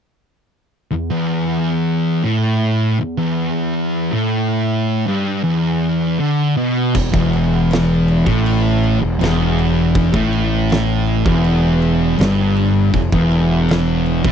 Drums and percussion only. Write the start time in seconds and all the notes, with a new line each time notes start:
6.95 kick, crash
7.14 kick
7.33 crash
7.71 snare, crash
8.08 crash
8.27 kick
8.46 crash
8.83 crash
9.21 snare, crash
9.59 crash
9.95 kick, crash
10.14 kick
10.33 crash
10.70 snare, crash
11.07 crash
11.26 kick
11.44 crash
11.82 crash
12.18 snare, crash
12.56 crash
12.93 kick, crash
13.12 kick
13.31 crash
13.69 snare, crash
14.06 crash
14.25 kick